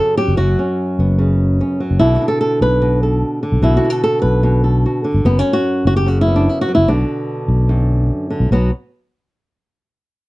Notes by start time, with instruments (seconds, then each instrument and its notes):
Already playing: nylon-string guitar F#2 C#3 F#3 B3 A4
0.17 nylon-string guitar F#3 G4
0.28 fretless electric bass F#1
0.37 fretless electric bass F#1, nylon-string guitar F#2 F#4
0.59 nylon-string guitar C#4
0.99 fretless electric bass F#1, nylon-string guitar B3
1.18 nylon-string guitar C#3
1.61 nylon-string guitar C#4
1.80 nylon-string guitar F#3
1.91 fretless electric bass F#1
1.99 fretless electric bass B1, nylon-string guitar B2 D3 D4 E4
2.15 nylon-string guitar F#4
2.22 nylon-string guitar D4
2.28 nylon-string guitar A4
2.41 nylon-string guitar A4
2.61 fretless electric bass B1, nylon-string guitar B4
2.82 nylon-string guitar B2
3.03 nylon-string guitar A4
3.43 nylon-string guitar D3
3.52 fretless electric bass B1
3.62 fretless electric bass B1, nylon-string guitar B2 E4
3.77 nylon-string guitar F#4
3.85 nylon-string guitar D4
3.90 nylon-string guitar A4
4.04 nylon-string guitar A4
4.22 fretless electric bass B1, nylon-string guitar B4
4.43 nylon-string guitar B2
4.64 nylon-string guitar A4
4.86 nylon-string guitar F#4
5.04 nylon-string guitar D3
5.14 fretless electric bass G1
5.25 fretless electric bass F#1, nylon-string guitar F#2 B3
5.39 nylon-string guitar C#4
5.53 nylon-string guitar F#4
5.85 fretless electric bass F#1, nylon-string guitar F#4
5.96 nylon-string guitar G4
6.06 nylon-string guitar C#3 F#4
6.21 nylon-string guitar E4
6.28 nylon-string guitar B3
6.36 nylon-string guitar D4
6.49 nylon-string guitar E4
6.61 nylon-string guitar F#4
6.68 nylon-string guitar F#3
6.75 fretless electric bass F#1, nylon-string guitar E4
6.88 fretless electric bass B1, nylon-string guitar B2 D3 B3 D4
7.48 fretless electric bass B1
7.69 nylon-string guitar F#2
8.30 nylon-string guitar D3
8.40 fretless electric bass B1
8.51 fretless electric bass B1, nylon-string guitar B2 F#3 B3